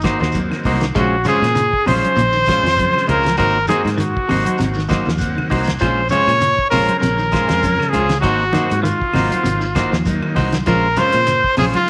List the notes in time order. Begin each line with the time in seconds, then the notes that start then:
Already playing: G#1 D#4
0.01 A#3 D#4 F#4 C5, kick, closed hi-hat, high conga, claves, shekere
0.05 snare
0.19 D#2 D#3 D#4 F#4 C5, snare, shekere
0.32 D#3 F#3 A#3 C4, kick, closed hi-hat, high conga, shekere
0.51 D#3, snare, claves
0.63 C2 A#3 D#4 F#4 C5, kick, open hi-hat, low conga, shekere
0.80 D#3, snare, closed hi-hat, shekere
0.95 A#1 G#3 C#4 F4 F#4 C5, kick, closed hi-hat, high conga, low conga, claves, shekere
1.24 C#3 F3 G#3 C4 C#4 F4 C5, snare, closed hi-hat, high conga, shekere
1.28 G#4
1.42 A#2, snare, closed hi-hat, claves, shekere
1.55 C#3, closed hi-hat, high conga, shekere
1.73 kick
1.86 A#1 C3 G#3 C#4 F4 C5, open hi-hat, high conga, low conga, claves, shekere
2.02 C#3 F3 G#3 C#4 D#4 F4 C5, closed hi-hat, high conga
2.16 A#1 A#2, closed hi-hat, shekere
2.20 high conga, low conga
2.33 D#3, shekere
2.46 G#3 C#4 F4 C5, kick, snare, closed hi-hat, high conga, claves, shekere
2.63 F2 F3, snare, closed hi-hat, shekere
2.76 C#3 F3 G#3 C4, kick, closed hi-hat, high conga, shekere
2.94 snare, claves
3.06 C#2 G#3 C#4 F4 A#4 C5, closed hi-hat, low conga, shekere
3.23 F3, snare, closed hi-hat, shekere
3.37 G#1 F#3 A#3 D#4 F#4 A#4 C5, kick, closed hi-hat, high conga, low conga, claves, shekere
3.67 D#3 F#3 A#3 C4 D#4 F#4 G#4 C5, closed hi-hat, high conga, shekere
3.85 G#2, snare, closed hi-hat, claves, shekere
3.98 D#3 F#4, closed hi-hat, high conga, shekere
4.17 kick
4.29 G#1 C3 A#3 D#4 F#4 C5, open hi-hat, high conga, low conga, claves, shekere
4.44 D#3 F#3 A#3 C4 D#4 F#4 C5, closed hi-hat, high conga
4.58 G#1 C3, snare, closed hi-hat, high conga, low conga, shekere
4.74 D#3, shekere
4.79 snare
4.89 A#3 D#4 F#4 C5 D#5, kick, snare, closed hi-hat, high conga, claves, shekere
5.05 D#2 F3 F5, snare, shekere
5.18 D#3 F#3 A#3 C4 F#5, kick, closed hi-hat, shekere
5.37 D#3, low conga, claves
5.49 C2 A#3 D#4 F#4 C5 G#5, kick, open hi-hat, low conga, shekere
5.64 snare, closed hi-hat, low conga, shekere
5.79 A#1 F3 G#3 C#4 F4 C5, kick, snare, closed hi-hat, claves, shekere
5.83 high conga, low conga
6.09 C3 C#3 F3 G#3 C#4 F4 C5 C#5, closed hi-hat, high conga, shekere
6.27 A#2, closed hi-hat, claves, shekere
6.40 C#3, closed hi-hat, high conga, shekere
6.59 kick
6.70 A#1 C3 G#3 C#4 F4 A#4 C5, open hi-hat, low conga, claves, shekere
6.88 C#3 F3 G#3 C4, closed hi-hat, high conga
6.99 A#1 C3 A#4, shekere
7.03 snare, closed hi-hat, high conga
7.19 D#3, shekere
7.32 G#3 C#4 F4 C5, kick, snare, closed hi-hat, high conga, claves, shekere
7.48 F2 G#3 C#4 F4 C5, snare, closed hi-hat, shekere
7.62 C#3 F3 G#3 C#4, kick, closed hi-hat, high conga, shekere
7.79 C#3, snare, claves
7.89 G#3 C#4 G#4, low conga
7.93 C#2 F4 C5, closed hi-hat, shekere
8.09 C#3, snare, closed hi-hat, shekere
8.21 G#1 F#3 A#3 D#4 F#4 C5, kick, closed hi-hat, high conga, claves, shekere
8.52 D#3 F#3 A#3 C4 D#4 F#4 C5, snare, closed hi-hat, high conga, shekere
8.70 G#2, closed hi-hat, claves, shekere
8.82 D#3 F4, closed hi-hat, high conga, shekere
9.02 kick
9.13 G#1 C3 A#3 D#4 F#4 C5, snare, open hi-hat, high conga, low conga, claves, shekere
9.30 D#3 F#3 A#3 C4 F#4 C5, closed hi-hat, high conga
9.44 G#1 C3, closed hi-hat, high conga, shekere
9.60 D#3, shekere
9.75 A#3 D#4 F#4 C5, kick, snare, closed hi-hat, high conga, claves, shekere
9.91 D#2 F3, snare, shekere
10.05 D#3 F#3 A#3 D#4, kick, closed hi-hat, high conga, shekere
10.22 D#3, claves
10.35 C2 D#4 F#4 C5, muted clean electric guitar stroke, kick, snare, open hi-hat, low conga, shekere
10.52 D#3, snare, closed hi-hat, high conga, shekere
10.66 A#1 F3 G#3 C#4 F4 A#4 C5, kick, closed hi-hat, high conga, low conga, claves, shekere
10.96 C#3 F3 G#3 C4 C#4 F4 C5, snare, closed hi-hat, high conga, shekere
11.12 A#2, closed hi-hat, claves, shekere
11.27 C#3, closed hi-hat, high conga, shekere
11.44 kick
11.57 A#1 C3 C#4 F4 G#4 C5, muted clean electric guitar stroke, open hi-hat, high conga, low conga, claves, shekere
11.72 C#3 F3 G#3 D#4 F4, closed hi-hat, high conga